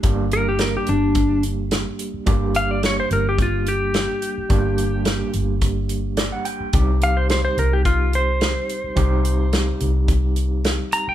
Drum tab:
HH |xxxxxxxx|xxxxxxxx|xxxxxxxx|xxxxxxxx|
SD |--o---o-|--o---o-|--o---o-|--o---o-|
BD |o---o---|o---o---|o---o---|o---o---|

HH |xxxxxxxx|
SD |--o---o-|
BD |o---o---|